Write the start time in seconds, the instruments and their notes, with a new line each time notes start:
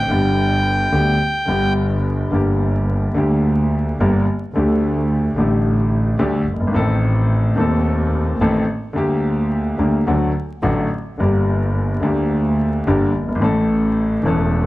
Already playing: bandoneon G5
0.08 double bass G1, grand piano G1 G2 D3 G3 B3
0.12 grand piano G4
0.92 double bass D2, grand piano D2 D3 G3 B3 G4
1.46 grand piano G1 G2 D3 G3 B3, double bass G1
1.50 grand piano G4
2.30 grand piano G1 G2 D3 G3 A#3 G4, double bass G1
3.14 grand piano D2 D3 G3 A#3 G4, double bass D2
4.00 double bass G1, grand piano G1 G2 D3 G3 A#3 G4
4.54 double bass D2, grand piano D2 D3 G3 A3 G4
5.36 double bass A1, grand piano A1 A2 D3 G3 A3 G4
6.19 grand piano D2 D3 G3 A3 G4, double bass D2
6.48 double bass G1
6.53 grand piano F#1
6.60 grand piano G1
6.67 grand piano G#1
6.72 double bass A1, grand piano A1 A2 D#3 A3 C4 A4
7.56 grand piano D#1 D#2 D#3 A3 C4, double bass D#2
7.60 grand piano A4
8.39 double bass A1, grand piano A1 A2 D#3 A3 C4 A4
8.93 double bass D2, grand piano D2 D3 G3 A#3
8.98 grand piano G4
9.77 double bass D2, grand piano D2 D3 G3 A#3 G4
10.06 double bass D2, grand piano D2 D3 F#3 A3 F#4
10.62 grand piano A1 A2 D3 F#3 A3 F#4, double bass A1
11.18 double bass G1, grand piano G1 G2 D3 G3 A#3 G4
12.00 grand piano D2 D3 G3 A#3, double bass D2
12.05 grand piano G4
12.87 double bass G1, grand piano G1 G2 D3 G3 A#3 G4
13.15 double bass G1
13.22 grand piano F#1
13.28 grand piano G1
13.35 grand piano G#1
13.40 grand piano A1 A2 E3 A3 C#4 A4, double bass A1
14.23 double bass E1, grand piano E1 E2 E3 A3 C#4
14.27 grand piano A4